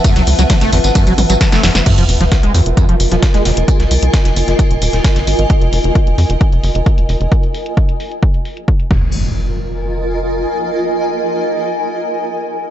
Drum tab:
CC |----------------|x---------------|----------------|----------------|
RD |x---x---x---x---|----------------|----------------|----------------|
HH |xxoxxxoxxxoxxxox|xxoxxxoxxxoxxxox|xxoxxxoxxxoxxxox|xxoxxxoxxxoxxxox|
TB |xxxxxxxxxxxxxxxx|x-x-x-x-x-x-x-x-|x-x-x-x-x-x-x-x-|----------------|
SD |-o--oo-o----oooo|---oo------oooo-|-o--oo-o---ooo--|----------------|
T2 |----o-----o-----|----------------|----------------|----------------|
BD |o---o---o---o---|o---o---o---o---|o---o---o---o---|o---o---o---o---|

CC |--------------x-|----------------|----------------|
RD |----------------|----------------|----------------|
HH |xxoxxxoxxxoxxx--|----------------|----------------|
TB |----------------|----------------|----------------|
SD |----------------|----------------|----------------|
T2 |----------------|----------------|----------------|
BD |o---o---o---o-o-|----------------|----------------|